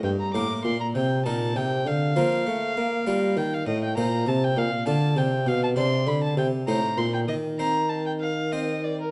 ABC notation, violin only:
X:1
M:6/8
L:1/16
Q:3/8=66
K:Bb
V:1 name="Violin"
g b d'2 c' b g2 a2 g2 | f8- f2 g f | e g b2 a g f2 a2 g2 | f a c'2 =b a g2 _b2 c' g |
e2 b2 a g f2 e2 d B |]